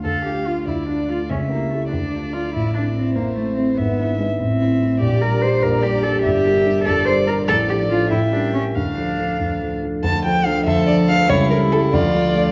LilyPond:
<<
  \new Staff \with { instrumentName = "Violin" } { \time 6/8 \key d \minor \tempo 4. = 96 a'8 g'8 f'8 e'8 d'8 f'8 | cis'8 bes8 a8 d'4 f'8 | e''2. | e''4. e''4. |
d''4. d''4. | d''2. | d''4. g''4. | f''2~ f''8 r8 |
a''8 g''8 f''8 e''8 d''8 f''8 | cis''8 bes'8 a'8 d''4. | }
  \new Staff \with { instrumentName = "Violin" } { \time 6/8 \key d \minor f''4. d''4. | e''4. d''4.~ | d''4. c''4. | e''2. |
d''4. d''4. | e''4. d''4. | d''4. e''4. | f''2~ f''16 r8. |
r4. a'4. | e'4. f'4. | }
  \new Staff \with { instrumentName = "Cello" } { \time 6/8 \key d \minor a'8 g'8 f'8 e'8 d'8 f'8 | cis'8 bes8 a8 d'4 f'8 | e'8 d'8 c'8 bes8 a8 c'8 | b4 gis8 c'4. |
g'8 bes'8 c''8 bes'8 g'8 a'8 | g'4. a'8 c''8 bes'8 | a'8 g'8 f'8 e'8 d'8 cis'8 | d'2~ d'8 r8 |
f2. | g4. f4. | }
  \new Staff \with { instrumentName = "Grand piano" } { \time 6/8 \key d \minor <d, d>8 <a d' f'>8 <a d' f'>8 <d, d>8 <a d' f'>8 <a d' f'>8 | <cis, cis>8 <a e' g'>8 <a e' g'>8 <d, d>8 <a d' f'>8 <a d' f'>8 | <a,, a,>8 <a c' e'>8 <a c' e'>8 <a,, a,>8 <a c' e'>8 <a c' e'>8 | <gis,, gis,>8 <b d' e'>8 <b d' e'>8 <a,, a,>8 <a c' e'>8 <a c' e'>8 |
<bes,, bes,>8 <g d' g'>8 <g d' g'>8 <bes,, bes,>8 <g d'>8 <g d' g'>8 | <g,, g,>8 <g d' bes'>8 <g d' bes'>8 <g,, g,>8 <g d' bes'>8 <g d'>8 | <a,, a,>8 <f d' a'>8 <f d' a'>8 <a,, a,>8 <g cis' bes'>8 <g cis'>8 | <d, d>8 <f d' a'>8 <f d' a'>8 <d, d>8 <f d' a'>8 <f d' a'>8 |
<d, d>8 <f d' a'>8 <f d' a'>8 <d, d>8 <f d' a'>8 <f d' a'>8 | <cis, cis>8 <g e' a'>8 <g e' a'>8 <d, d>8 <a f' a'>8 <a f' a'>8 | }
>>